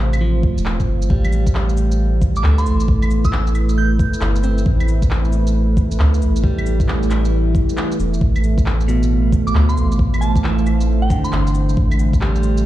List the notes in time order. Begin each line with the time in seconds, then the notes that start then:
Already playing: A1 C3 A3 C5 F5
0.13 claves, shaker
0.21 F3
0.43 kick
0.57 E1, shaker
0.66 clap
0.80 kick, shaker
0.88 G1
1.02 shaker
1.09 A1 G3 A3 E4 B4, kick
1.25 claves, shaker
1.32 cabasa
1.47 kick, shaker
1.55 clap
1.69 shaker
1.77 cabasa
1.92 shaker
2.22 kick, cabasa
2.36 D6, shaker
2.44 D2 A3, clap
2.58 C6, shaker
2.66 A1, cabasa
2.80 shaker
2.88 kick
3.02 claves, shaker
3.11 cabasa
3.25 E6, kick, shaker
3.33 clap
3.47 shaker
3.55 cabasa, claves
3.69 shaker
3.78 G6
3.99 kick, cabasa
4.14 shaker
4.21 G1, clap, cabasa
4.36 shaker
4.44 C4, cabasa
4.58 shaker
4.66 A1, kick
4.80 claves, shaker
4.88 cabasa
5.02 kick, shaker
5.11 clap
5.25 shaker
5.33 cabasa
5.47 shaker
5.77 kick, cabasa
5.91 shaker
5.99 D2, clap
6.14 shaker
6.22 A1, cabasa
6.36 shaker
6.44 G3, kick
6.58 claves, shaker
6.66 cabasa
6.80 kick, shaker
6.88 clap
7.03 shaker
7.10 E3, clap, cabasa, claves
7.25 shaker
7.55 kick, cabasa
7.69 shaker
7.77 clap, cabasa
7.92 shaker
7.99 E1, cabasa
8.14 shaker
8.21 A1 C5 F5, kick
8.36 claves, shaker
8.44 cabasa
8.58 kick, shaker
8.66 clap
8.81 shaker
8.88 B2, cabasa
9.03 shaker
9.32 kick, cabasa
9.47 D6, shaker
9.55 D2, clap
9.69 C6, shaker
9.77 A1, cabasa
9.92 shaker
9.99 kick
10.14 claves, shaker
10.21 A5, cabasa
10.36 kick, shaker
10.44 E3, clap
10.58 shaker
10.66 cabasa, claves
10.81 shaker
11.02 G5
11.10 D3, kick, cabasa
11.24 C6, shaker
11.33 G1, clap, cabasa
11.47 shaker
11.55 cabasa
11.69 shaker
11.77 A1 E4, kick
11.91 claves, shaker
11.99 cabasa
12.13 kick, shaker
12.21 G3, clap
12.36 shaker
12.43 cabasa
12.57 shaker